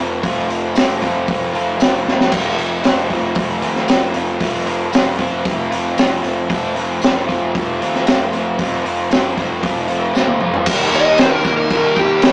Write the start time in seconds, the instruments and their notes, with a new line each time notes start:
Already playing: picked electric bass F1, overdriven electric guitar F3 C4 F4
0.00 overdriven electric guitar A3
0.22 picked electric bass F1, overdriven electric guitar F3 A3 C4 F4, kick, open hi-hat
0.47 picked electric bass F1, overdriven electric guitar A3 C4 F4, open hi-hat
0.74 picked electric bass F1, overdriven electric guitar F3 A3 C4 F4, snare, open hi-hat, tambourine
1.01 picked electric bass F1, overdriven electric guitar F3 A3 C4 F4, kick, open hi-hat
1.27 picked electric bass F1, overdriven electric guitar F3 A3 C4 F4, kick, open hi-hat
1.52 picked electric bass F1, overdriven electric guitar F3 A3 C4 F4, open hi-hat
1.79 picked electric bass F1, overdriven electric guitar F3 A3 C4 F4, snare, open hi-hat, tambourine
2.05 picked electric bass F1, overdriven electric guitar A3 C4 F4, snare
2.21 snare
2.31 picked electric bass F1, overdriven electric guitar F3 A3 C4 F4, kick, open hi-hat, crash
2.57 picked electric bass F1, overdriven electric guitar A3 C4 F4, open hi-hat
2.84 picked electric bass F1, overdriven electric guitar F3 A3 C4 F4, snare, open hi-hat, tambourine
3.09 picked electric bass F1, overdriven electric guitar F3 A3 C4 F4, kick, open hi-hat
3.35 picked electric bass F1, overdriven electric guitar F3 A3 C4 F4, kick, open hi-hat
3.61 picked electric bass D#2, overdriven electric guitar F3 A3 C4 F4, open hi-hat
3.76 snare
3.87 picked electric bass F1, overdriven electric guitar F3 A3 C4, snare, open hi-hat, tambourine
3.92 overdriven electric guitar F4
4.14 picked electric bass F1, overdriven electric guitar A3 C4 F4, open hi-hat
4.39 picked electric bass F1, overdriven electric guitar F3 A3 C4 F4, kick, open hi-hat
4.66 picked electric bass F1, overdriven electric guitar A3 C4 F4, open hi-hat
4.91 picked electric bass F1, overdriven electric guitar F3 A3 C4, snare, open hi-hat, tambourine
4.96 overdriven electric guitar F4
5.18 picked electric bass F1, overdriven electric guitar F3 A3 C4 F4, kick, open hi-hat
5.44 picked electric bass F1, overdriven electric guitar F3 A3 C4 F4, kick, open hi-hat
5.71 picked electric bass F1, overdriven electric guitar F3 A3 C4 F4, open hi-hat
5.96 picked electric bass F1, overdriven electric guitar F3 A3 C4 F4, snare, open hi-hat, tambourine
6.23 picked electric bass F1, overdriven electric guitar A3 C4 F4, open hi-hat
6.48 picked electric bass F1, overdriven electric guitar F3 A3 C4, kick, open hi-hat
6.52 overdriven electric guitar F4
6.74 picked electric bass F1, overdriven electric guitar A3 C4 F4, open hi-hat
7.01 picked electric bass F1, overdriven electric guitar F3 A3 C4 F4, snare, open hi-hat, tambourine
7.27 picked electric bass F1, overdriven electric guitar F3 A3 C4 F4, kick, open hi-hat
7.54 picked electric bass F1, overdriven electric guitar F3 A3 C4 F4, kick, open hi-hat
7.79 picked electric bass D#2, overdriven electric guitar F3 A3 C4 F4, open hi-hat
7.95 snare
8.06 picked electric bass F1, overdriven electric guitar F3 A3 C4 F4, snare, open hi-hat, tambourine
8.32 picked electric bass F1, overdriven electric guitar A3 C4 F4, open hi-hat
8.58 picked electric bass F1, overdriven electric guitar F3 A3 C4 F4, kick, open hi-hat
8.84 picked electric bass F1, overdriven electric guitar A3 C4 F4, open hi-hat
9.10 picked electric bass F1, overdriven electric guitar F3 A3 C4 F4, snare, open hi-hat, tambourine
9.36 picked electric bass F1, overdriven electric guitar F3 A3 C4 F4, kick, open hi-hat
9.62 picked electric bass F1, overdriven electric guitar F3 A3 C4 F4, kick, open hi-hat
9.88 picked electric bass F1, overdriven electric guitar F3 A3 C4 F4, open hi-hat
10.14 picked electric bass F1, overdriven electric guitar F3 A3 C4 F4, snare, tambourine
10.27 high tom
10.39 picked electric bass F1, overdriven electric guitar A3 C4 F4, mid tom
10.54 floor tom
10.66 picked electric bass D#2, overdriven electric guitar D#3 G3 A#3 G4 A#4, kick, crash, tambourine
10.92 picked electric bass D#2, overdriven electric guitar D#3 G3 A#3 G4 A#4, electric slide guitar D#5, tambourine
11.18 picked electric bass D#2, overdriven electric guitar D#3 G3 A#3 G4 A#4, electric slide guitar C5, snare, tambourine, crash
11.34 electric slide guitar A#4
11.44 picked electric bass D#2, overdriven electric guitar D#3 G3 A#3 G4 A#4, electric slide guitar A#4, kick, tambourine
11.57 electric slide guitar A#4
11.69 picked electric bass D#2, overdriven electric guitar D#3 G3 A#3 G4 A#4, kick, tambourine, crash
11.96 picked electric bass D#2, overdriven electric guitar D#3 G3 A#3 G4 A#4, electric slide guitar G4, kick, tambourine
12.22 picked electric bass D#2, overdriven electric guitar D#3 G3 A#3 G4 A#4, snare, tambourine, crash